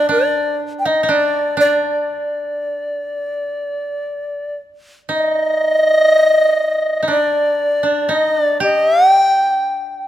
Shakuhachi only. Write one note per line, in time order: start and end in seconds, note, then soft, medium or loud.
0.00 0.10 D5 medium
0.11 0.57 D5 medium
0.79 0.88 G5 soft
0.86 1.12 D#5 medium
1.11 1.59 D5 medium
1.60 4.56 D5 medium
5.13 7.07 D#5 medium
7.10 8.13 D5 medium
8.12 8.41 D#5 medium
8.41 8.61 D5 medium
8.62 9.11 D#5 medium
9.11 10.08 G5 medium